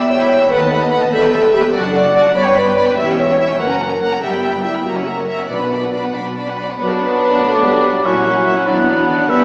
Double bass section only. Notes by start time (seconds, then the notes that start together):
Already playing: E1
0.51 D#2
1.13 E1
1.75 F#1
2.36 G1
2.98 E1
3.59 F#1
4.23 G1
4.86 F#1
5.50 B1
6.14 B1
6.79 B1
7.43 B1
8.05 A#1
8.68 B1
9.29 E2